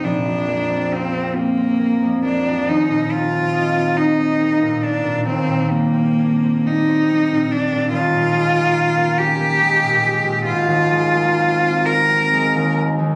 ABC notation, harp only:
X:1
M:6/8
L:1/16
Q:3/8=46
K:Eb
V:1 name="Harp"
[B,,,F,CDF] F,, B, C F C F C B, F,, B, F,, | E,, B,, B, C E C E C B, B,, B, B,, | E,, B,, G, C D C D C G, B,, G, B,, | E,, B,, A, B, _D B, D B, A, B,, A, B,, |
A,,, E,, A, B, C B, C B, A, E,, A, E,, |]